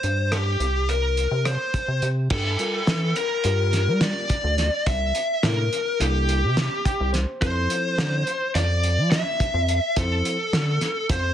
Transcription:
Already playing: C5
0.03 G2, closed hi-hat
0.32 G4, cross-stick, closed hi-hat
0.60 C2, closed hi-hat
0.89 A#4, closed hi-hat
1.17 closed hi-hat
1.31 C3
1.45 C5, cross-stick, closed hi-hat
1.74 kick, closed hi-hat
1.88 C3
2.02 C3, closed hi-hat
2.30 G2 A4, kick, crash
2.59 G3 F4 A4 A#4, closed hi-hat
2.87 E3, snare, closed hi-hat
3.16 A#4, closed hi-hat
3.44 G2 G3 F4 G4 A#4, closed hi-hat
3.73 snare, closed hi-hat
3.87 G3
4.01 D5, snare, closed hi-hat
4.29 kick, closed hi-hat
4.44 D2
4.58 snare, closed hi-hat
4.86 C2 E5, kick, closed hi-hat
5.15 closed hi-hat
5.43 A2 C3 A#3 D4 E4 A4 A#4, snare, closed hi-hat
5.73 closed hi-hat
6.00 C2 C3 A#3 D4 E4 G4 A4, closed hi-hat
6.29 closed hi-hat
6.44 C3
6.57 snare, closed hi-hat
6.85 G5, kick, closed hi-hat
7.01 C2
7.13 C5, snare, closed hi-hat
7.41 F2 F3 C4 E4 A4 C5, kick, closed hi-hat
7.70 closed hi-hat
7.98 D3, snare, closed hi-hat
8.27 closed hi-hat
8.55 F2 D5, snare, closed hi-hat
8.83 closed hi-hat
8.98 F3
9.11 E5, snare, closed hi-hat
9.40 kick, closed hi-hat
9.54 F2
9.68 closed hi-hat
9.96 F2 F3 C4 E4 A4 C5, kick, closed hi-hat
10.25 closed hi-hat
10.53 D3, snare, closed hi-hat
10.81 snare, closed hi-hat
11.09 F2 C5, kick, closed hi-hat

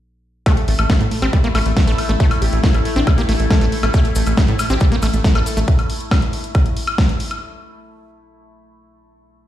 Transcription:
0.46 A3 E4 G4, kick, closed hi-hat, high woodblock
0.57 A3, closed hi-hat
0.68 A1 A3, open hi-hat
0.79 A1 A3, closed hi-hat, high woodblock
0.90 A3, kick, snare, closed hi-hat
1.00 A2 A3, closed hi-hat
1.11 A3, open hi-hat
1.22 A1 C4 G4, closed hi-hat, high woodblock
1.33 G3 A3, kick, closed hi-hat
1.44 A3 A#3, closed hi-hat
1.55 A1 A3, open hi-hat, high woodblock
1.66 A1 A3, closed hi-hat
1.77 A3, kick, snare, closed hi-hat
1.87 A1 A3 A4, closed hi-hat
1.98 A3, open hi-hat, high woodblock
2.09 A1 A3, closed hi-hat
2.20 A3, kick, closed hi-hat
2.31 A3, closed hi-hat, high woodblock
2.42 A1 G4, open hi-hat
2.53 A1 A3, closed hi-hat
2.63 A3 E4, kick, snare, closed hi-hat
2.74 A1 A3, closed hi-hat, high woodblock
2.85 A3, open hi-hat
2.96 A1 C4 D4, closed hi-hat
3.07 G3 A3, kick, closed hi-hat, high woodblock
3.18 A#3 G4, closed hi-hat
3.29 A1 A3, open hi-hat
3.40 A1 A3, closed hi-hat
3.50 A3 A4, kick, snare, closed hi-hat, high woodblock
3.61 A1 A3, closed hi-hat
3.72 A3, open hi-hat
3.83 A1 A3, closed hi-hat, high woodblock
3.94 A3 G4, kick, closed hi-hat, cabasa
4.05 A3, closed hi-hat
4.15 A1 A3, open hi-hat, cabasa
4.26 A1 A3, closed hi-hat, cabasa, high woodblock
4.37 A3, kick, snare, closed hi-hat, cabasa
4.48 A2 A3, closed hi-hat
4.59 A3, open hi-hat, cabasa, high woodblock
4.70 A1 C4 G4, closed hi-hat, cabasa
4.80 G3 A3, kick, closed hi-hat, cabasa
4.92 A3 A#3, closed hi-hat
5.02 A1 A3, open hi-hat, cabasa, high woodblock
5.13 A1 A3, closed hi-hat, cabasa
5.24 A3, kick, snare, closed hi-hat, cabasa
5.35 A1 A3 A4, closed hi-hat, high woodblock
5.46 A3, open hi-hat, cabasa
5.57 A1 A3, closed hi-hat, cabasa
5.68 kick, closed hi-hat
5.79 closed hi-hat, high woodblock
5.90 open hi-hat
6.00 closed hi-hat
6.11 kick, snare, closed hi-hat, high woodblock
6.22 closed hi-hat
6.33 open hi-hat
6.44 closed hi-hat
6.55 kick, closed hi-hat, high woodblock
6.66 closed hi-hat
6.77 open hi-hat
6.87 closed hi-hat, high woodblock
6.98 kick, snare, closed hi-hat
7.09 closed hi-hat
7.20 open hi-hat
7.31 closed hi-hat, high woodblock

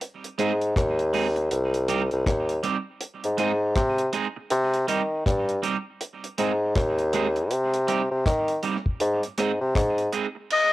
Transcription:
0.01 closed hi-hat
0.24 closed hi-hat
0.38 G#2 G#3 C4 D#4 G#4, closed hi-hat
0.61 closed hi-hat
0.76 D#2, kick, cross-stick, closed hi-hat
0.99 closed hi-hat
1.13 G#3 C4 D#4 G#4, open hi-hat
1.36 muted clean electric guitar stroke, closed hi-hat
1.51 C2, closed hi-hat
1.74 closed hi-hat
1.88 G3 C4 D#4 G4, closed hi-hat
2.11 C2, closed hi-hat
2.26 D#2, kick, cross-stick, closed hi-hat
2.49 closed hi-hat
2.63 G3 C4 D#4 G4, closed hi-hat
3.01 closed hi-hat
3.24 G#2, closed hi-hat
3.37 G#2 G#3 C4 D#4 G#4, closed hi-hat
3.76 C3, kick, cross-stick, closed hi-hat
3.99 closed hi-hat
4.13 G#3 C4 D#4 G#4, closed hi-hat
4.36 muted clean electric guitar stroke
4.50 C3, closed hi-hat
4.74 closed hi-hat
4.87 D#3 G3 C4 D#4 G4, closed hi-hat
5.26 G2, kick, cross-stick, closed hi-hat
5.49 closed hi-hat
5.62 G3 C4 D#4 G4, closed hi-hat
6.01 closed hi-hat
6.24 closed hi-hat
6.38 G#2 G#3 C4 D#4 G#4, closed hi-hat
6.76 D#2, kick, cross-stick, closed hi-hat
6.99 closed hi-hat
7.13 G#3 C4 D#4 G#4, closed hi-hat
7.36 muted clean electric guitar stroke, closed hi-hat
7.51 C3, closed hi-hat
7.74 closed hi-hat
7.87 G3 C4 D#4 G4, closed hi-hat
8.11 C3
8.26 D#3, kick, cross-stick, closed hi-hat
8.48 closed hi-hat
8.63 G3 C4 D#4 G4, closed hi-hat
8.86 kick
9.00 G#2, closed hi-hat
9.23 closed hi-hat
9.38 G#2 G#3 C4 D#4 G#4, cross-stick, closed hi-hat
9.61 C3
9.75 G#2, kick, cross-stick, closed hi-hat
9.98 closed hi-hat
10.12 G#3 C4 D#4 G#4, closed hi-hat
10.35 muted clean electric guitar stroke
10.50 D#5, crash

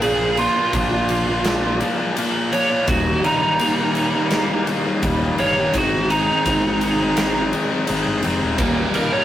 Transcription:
Already playing: A#1
0.01 A#2 F3 A#3 D4 F4 G#4, ride
0.37 F3 A#3 D4 F4, ride
0.56 A#3 D4 F4
0.73 A#1 A#2 F3 A#3 D4, kick, ride
0.78 F4
0.92 A#3 D4 F4
1.09 A#3, ride
1.27 A#3 D4 F4
1.44 D4, snare, ride
1.63 A#3 D4 F4
1.80 F3 A#3 D4 F4, ride
1.98 A#3 D4 F4
2.15 A#2 F3 A#3 D4 F4, ride
2.52 F3 A#3 D4 F4 C#5, ride
2.70 A#3 D4 F4
2.87 D#1 D#2 A#2 D#3 G3 A#3 D#4 F#4, kick, ride
3.24 D#3 G3 A#3 D#4, ride
3.41 D#3 G3 A#3 D#4
3.59 D#2 A#2 D#3 G3 A#3, ride
3.63 D#4
3.79 D#3 G3 A#3 D#4
3.95 G3, ride
4.13 D#3 G3 A#3 D#4
4.31 A#3, snare, ride
4.50 D#3 G3 A#3 D#4
4.67 D#3 G3 A#3 D#4, ride
4.85 D#3 G3 A#3 D#4
5.02 D#1 D#2 A#2 D#3 G3 A#3 D#4, kick, ride
5.38 G1 D#3 G3 A#3 D#4 C#5, ride
5.55 D#3 G3 A#3 D#4
5.74 G#1 G#2 D#3 G#3 C4, kick, ride
5.78 D#4 F#4
6.10 D#3 G#3 C4 D#4, ride
6.29 G#3 C4 D#4
6.46 G#1 G#2 D#3 G#3 C4 D#4, kick, ride
6.64 G#3 C4 D#4
6.81 G#3, ride
6.99 G#3 C4 D#4
7.17 C4, snare, ride
7.35 G#3 C4 D#4
7.52 D#3 G#3 C4 D#4, ride
7.69 G#3 C4 D#4
7.87 G#1 G#2 D#3 G#3 C4 D#4, ride
8.06 G1
8.22 F1 D#3 G#3 C4 D#4, ride
8.40 D#1 G#3 C4 D#4
8.58 D#1 D#2 A#2 D#3 G3 A#3 D#4, kick, ride
8.94 D#3 G3 A#3 D#4 A#4, ride
9.12 D#3 G3 A#3 D#4 C#5

